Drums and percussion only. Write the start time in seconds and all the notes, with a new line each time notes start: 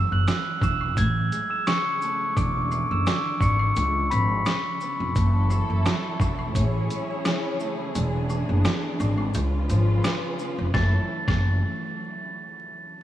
0.28 cross-stick, snare, closed hi-hat, maracas
0.62 kick, high woodblock, maracas, shaker
0.81 high woodblock
0.97 kick, closed hi-hat, maracas
1.32 closed hi-hat, maracas, shaker
1.67 cross-stick, snare, closed hi-hat, maracas
2.02 maracas, shaker
2.37 kick, closed hi-hat, maracas
2.72 high woodblock, maracas, shaker
3.07 cross-stick, snare, closed hi-hat, maracas
3.41 kick, high woodblock, maracas, shaker
3.59 high woodblock
3.76 closed hi-hat, maracas
4.11 closed hi-hat, maracas, shaker
4.46 cross-stick, snare, closed hi-hat, maracas
4.81 maracas, shaker
5.16 kick, closed hi-hat, maracas
5.50 high woodblock, maracas, shaker
5.86 cross-stick, snare, closed hi-hat, maracas
6.20 kick, high woodblock, maracas, shaker
6.39 high woodblock
6.55 kick, closed hi-hat, maracas
6.90 closed hi-hat, shaker, maracas
7.25 cross-stick, snare, closed hi-hat, maracas
7.60 maracas, shaker
7.95 closed hi-hat, maracas
8.30 high woodblock, shaker, maracas
8.65 cross-stick, snare, closed hi-hat, maracas
9.00 high woodblock, maracas, shaker
9.18 high woodblock
9.34 closed hi-hat, maracas
9.70 closed hi-hat, maracas, shaker
10.04 cross-stick, snare, closed hi-hat, maracas
10.39 maracas, shaker
10.74 kick, snare, high woodblock
11.28 kick, snare, high woodblock